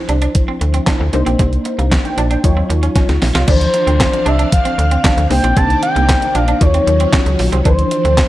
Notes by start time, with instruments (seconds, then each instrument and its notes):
Already playing: analog polysynth F3 D4 E4 C5
0.09 fm bass C2, clean electric guitar D4, closed hi-hat
0.22 clean electric guitar D4, closed hi-hat
0.35 kick, closed hi-hat
0.48 clean electric guitar C4
0.61 fm bass D2, muted clean electric guitar stroke, closed hi-hat
0.74 clean electric guitar C4, closed hi-hat
0.87 clean electric guitar D4, kick, snare, clap, closed hi-hat
1.00 fm bass D2
1.13 fm bass C2, analog polysynth A#3 D4 D#4 C5, muted clean electric guitar stroke, closed hi-hat
1.26 fm bass A#1, clean electric guitar C4, closed hi-hat
1.39 fm bass C2, clean electric guitar C4, kick, closed hi-hat
1.53 closed hi-hat
1.65 muted clean electric guitar stroke, closed hi-hat
1.79 fm bass C2, clean electric guitar A#3, closed hi-hat
1.92 muted clean electric guitar stroke, kick, snare, clap, closed hi-hat
2.05 analog polysynth G5, closed hi-hat
2.17 fm bass A#1, clean electric guitar D4, analog polysynth A5, closed hi-hat
2.31 clean electric guitar D4, analog polysynth G5, closed hi-hat
2.43 fm bass D#2, analog polysynth F#3 D#4 F4 C#5, kick, closed hi-hat
2.57 clean electric guitar C4
2.70 fm bass D#2, muted clean electric guitar stroke, closed hi-hat
2.83 clean electric guitar C#4, closed hi-hat
2.96 clean electric guitar C#4, kick, snare, closed hi-hat
3.09 fm bass C#2, snare, closed hi-hat
3.22 fm bass A#1, muted clean electric guitar stroke, snare, open hi-hat
3.35 fm bass C2, clean electric guitar F4, snare, closed hi-hat
3.47 fm bass D2, string machine D3 C4 D4 F5, analog polysynth E3 F3 D4 C5, clean electric guitar D4, analog synth lead C5, kick, closed hi-hat, crash
3.61 closed hi-hat
3.74 muted clean electric guitar stroke, closed hi-hat
3.87 fm bass D2, clean electric guitar C4, closed hi-hat
4.00 muted clean electric guitar stroke, kick, snare, clap, closed hi-hat
4.13 closed hi-hat
4.26 fm bass C2, clean electric guitar D4, analog synth lead E5, closed hi-hat
4.39 clean electric guitar D4, closed hi-hat
4.52 analog synth lead F5, kick, closed hi-hat
4.65 clean electric guitar C4, closed hi-hat
4.78 fm bass D2, muted clean electric guitar stroke, closed hi-hat
4.91 clean electric guitar C4, closed hi-hat
5.04 clean electric guitar D4, kick, snare, clap, closed hi-hat
5.17 fm bass D2, closed hi-hat
5.30 fm bass C2, string machine C3 D#3 A#3 D5, analog polysynth A#3 D4 D#4 C5, analog synth lead G5, muted clean electric guitar stroke, open hi-hat
5.44 fm bass A#1, clean electric guitar C4, closed hi-hat
5.57 fm bass C2, clean electric guitar C4, analog synth lead A5, kick, closed hi-hat
5.70 closed hi-hat
5.83 analog synth lead G5, muted clean electric guitar stroke, closed hi-hat
5.96 fm bass C2, clean electric guitar A#3, closed hi-hat
6.09 muted clean electric guitar stroke, kick, snare, clap, closed hi-hat
6.22 closed hi-hat
6.35 fm bass A#1, clean electric guitar D4, analog synth lead F5, closed hi-hat
6.48 clean electric guitar D4, closed hi-hat
6.60 fm bass D#2, string machine D#3 F#3 C#4, analog polysynth F#3 D#4 F4 C#5, analog synth lead C#5, kick, closed hi-hat
6.74 clean electric guitar C4, closed hi-hat
6.87 fm bass D#2, muted clean electric guitar stroke, closed hi-hat
7.00 clean electric guitar C4, closed hi-hat
7.13 clean electric guitar C#4, kick, snare, clap, closed hi-hat
7.26 fm bass C#2, closed hi-hat
7.39 fm bass A#1, muted clean electric guitar stroke, open hi-hat
7.52 fm bass C2, clean electric guitar C4, closed hi-hat
7.65 fm bass D2, string machine D3 C4 D4, analog polysynth E3 F3 D4 C5, clean electric guitar D4, analog synth lead C5, kick, closed hi-hat
7.79 closed hi-hat
7.91 muted clean electric guitar stroke, closed hi-hat
8.05 fm bass D2, clean electric guitar C4, closed hi-hat
8.17 muted clean electric guitar stroke, kick, snare, clap, closed hi-hat